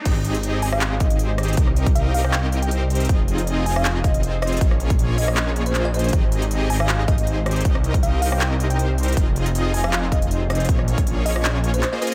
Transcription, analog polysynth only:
X:1
M:4/4
L:1/16
Q:1/4=158
K:Ab
V:1 name="Analog polysynth"
[CEGAe]6 [CEGAe]6 [CEGAc]4 | [CB]6 [CEGBe]6 [CEGBc]4 | [CEFAe]6 [CEFAe]6 [CEFAc]4 | B,6 [B,DFAd]6 [B,DFAc]4 |
[CEGAe]6 [CEGAe]6 [CEGAc]4 | [CEGBe]6 [CEGBe]6 [CEGBc]4 | [CEFA]6 [CEFAe]6 [CEFAc]4 | [B,DAd]6 [B,DFAd]6 z [B,DFAc] [B,DFAe]2 |]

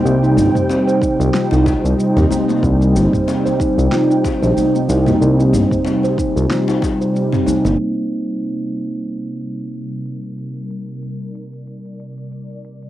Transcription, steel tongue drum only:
X:1
M:4/4
L:1/16
Q:"Swing 16ths" 1/4=93
K:Cm
V:1 name="Steel tongue drum"
C E G, c C c E F F E G, c G, C E B, | C E G, c C c E F F E G, c G, C E B, | C E G, c C c E F F E G, c G, C E B, | z16 |
z16 |]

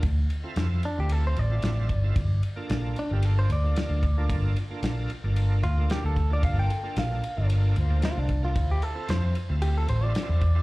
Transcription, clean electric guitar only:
X:1
M:4/4
L:1/16
Q:"Swing 16ths" 1/4=113
K:Gdor
V:1 name="Clean electric guitar"
z6 D G A c d6- | d2 z4 D G A c d6- | d2 z8 F2 G A2 d | f g3 f4 z4 F D2 F- |
F G A2 c2 z2 G A c d4- d |]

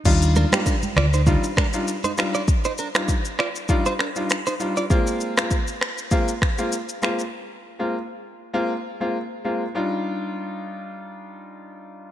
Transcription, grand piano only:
X:1
M:4/4
L:1/16
Q:"Swing 16ths" 1/4=99
K:Eb
V:1 name="Grand piano"
[G,DEF]3 [G,DEF] z4 [G,DEF] z2 [G,DEF] z2 [G,DEF] z | z3 [G,DEF] z4 [G,DEF] z2 [G,DEF] z2 [G,DEF] z | [A,B,CF]3 [A,B,CF] z4 [A,B,CF] z2 [A,B,CF] z2 [A,B,CF] z | z3 [A,B,CF] z4 [A,B,CF] z2 [A,B,CF] z2 [A,B,CF] z |
[G,DEF]16 |]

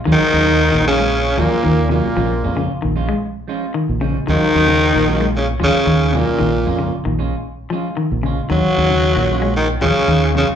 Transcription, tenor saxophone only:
X:1
M:4/4
L:1/8
Q:1/4=114
K:Ebm
V:1 name="Tenor saxophone" clef=bass
E,3 D,2 B,,2 B,,- | B,,2 z6 | E,4 D, D,2 B,,- | B,,2 z6 |
G,4 E, D,2 D, |]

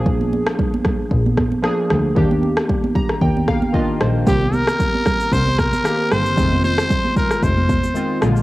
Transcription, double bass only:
X:1
M:4/4
L:1/16
Q:"Swing 16ths" 1/4=114
K:Fdor
V:1 name="Double bass" clef=bass
B,,,3 z4 z B,,,3 z3 D,,2 | E,,3 z4 z E,,3 z3 B,,,2 | C,,3 z4 z C,,3 z3 G,,,2 | F,,,3 z4 z F,,,3 z3 B,,,2 |]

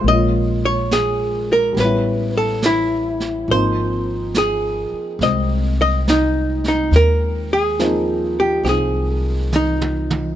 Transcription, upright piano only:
X:1
M:4/4
L:1/8
Q:"Swing" 1/4=70
K:Ab
V:1 name="Upright piano"
[A,B,DF]4 [G,=B,^C=E]4 | [F,B,CE]4 [A,C]4 | z2 [F,B,CE]2 [CEF]4 |]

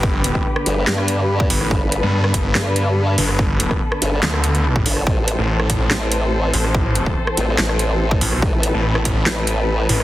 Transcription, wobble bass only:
X:1
M:4/4
L:1/8
Q:1/4=143
K:Am
V:1 name="Wobble bass" clef=bass
z3 G,,, G,,3 z | G,,, z3 G,,3 z | z3 G,,, z3 G,,, | A,,, z3 A,,,3 z |
z3 A,,, A,,,3 z | A,,, z3 A,,,3 z |]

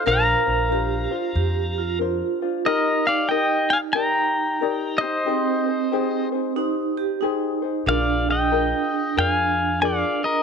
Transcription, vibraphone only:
X:1
M:4/4
L:1/8
Q:"Swing" 1/4=92
K:Bb
V:1 name="Vibraphone"
B2 G F G F F2 | [K:Eb] E8 | C4 E G E2 | D8 |]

